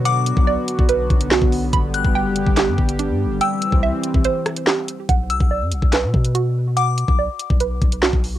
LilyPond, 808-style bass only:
\new Staff \with { instrumentName = "808-style bass" } { \clef bass \time 4/4 \key b \phrygian \tempo 4 = 143 b,8. b,,8 r8 b,,8. b,,8. b,,8. | g,,8. g,,8 fis,,8 g,,8 g,16 g,,8. g,16. g,,16. | r8. c,8 r8 c,16 r2 | b,,8 c,16 b,,8 fis,16 b,,16 b,,8 b,16 b,4.~ |
b,8. b,,8 r8 b,,8. b,,8. b,,8. | }